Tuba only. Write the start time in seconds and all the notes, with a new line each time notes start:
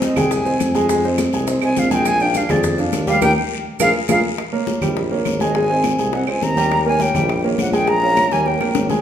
0.16 C2
0.60 F2
1.32 C2
1.62 C2
1.76 A#1
2.49 F2
2.93 D#2
3.22 D#2
3.80 A#1
4.09 A#1
4.82 A#1
5.26 G#1
5.98 C2
6.27 C#2
6.42 D#2
7.14 A#1
7.58 A#1
8.31 D#2
8.60 A#1
8.75 G#1